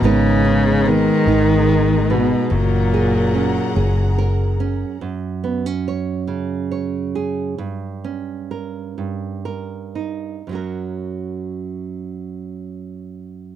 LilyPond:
<<
  \new Staff \with { instrumentName = "String section" } { \time 6/8 \key fis \major \tempo 4. = 47 <b gis' dis'' ais''>2. | <cis' gis' fis'' ais''>2. | r2. | r2. |
r2. | }
  \new Staff \with { instrumentName = "Nylon-string guitar" } { \time 6/8 \key fis \major << { <gis b dis' ais'>8 dis'8 b8 dis'8 ais'8 b8 | r8 gis'8 cis'8 gis'8 ais'8 cis'8 | r8 b16 cis'16 cis''4 cis''8 gis'8 | r8 cis'8 ais'4 ais'8 dis'8 |
<fis cis' fis' ais'>2. | } \\ { gis,2. | fis,2. | fis,4. cis4. | g,4. g,4. |
fis,2. | } >> }
  \new Staff \with { instrumentName = "Viola" } { \clef bass \time 6/8 \key fis \major gis2. | fis2~ fis8 r8 | r2. | r2. |
r2. | }
  \new Staff \with { instrumentName = "Cello" } { \clef bass \time 6/8 \key fis \major cis4 dis4. b,8 | ais,2 r4 | r2. | r2. |
r2. | }
  \new Staff \with { instrumentName = "Fingered electric bass" } { \clef bass \time 6/8 \key fis \major gis,,4. gis,,4. | fis,,4. fis,,4. | r2. | r2. |
r2. | }
>>